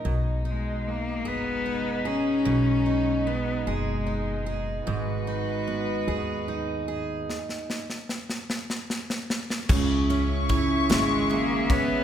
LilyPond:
<<
  \new Staff \with { instrumentName = "String section" } { \time 6/8 \key b \major \tempo 4. = 50 <b, gis dis'>2.~ | <b, gis dis'>2. | <gis fis' b'>2. | r2. |
<gis' e'' cis'''>2. | }
  \new Staff \with { instrumentName = "Steel-string acoustic guitar" } { \time 6/8 \key b \major b,8 dis'4 gis'8 dis'8 gis'8 | b,8 dis'8 b8 gis'8 dis'8 gis'8 | gis,8 dis'8 b8 gis'8 dis'8 gis'8 | r2. |
cis8 cis'8 e'8 gis8 gis'8 cis'8 | }
  \new Staff \with { instrumentName = "Cello" } { \time 6/8 \key b \major r8 gis8 ais8 b4 cis'8~ | cis'4 b8 gis4 r8 | r2. | r2. |
r4. gis8 ais8 b8 | }
  \new Staff \with { instrumentName = "Upright bass" } { \clef bass \time 6/8 \key b \major b,,4. fis,,4. | b,,4. fis,,4. | gis,,4. dis,4. | r2. |
cis,4. gis,,4. | }
  \new DrumStaff \with { instrumentName = "Drums" } \drummode { \time 6/8 r4. r4. | r4. r4. | r4. r4. | sn16 sn16 sn16 sn16 sn16 sn16 sn16 sn16 sn16 sn16 sn16 sn16 |
<cymc bd>8 cymr8 <bd cymr>8 <cymr sn>8 cymr8 <bd cymr>8 | }
>>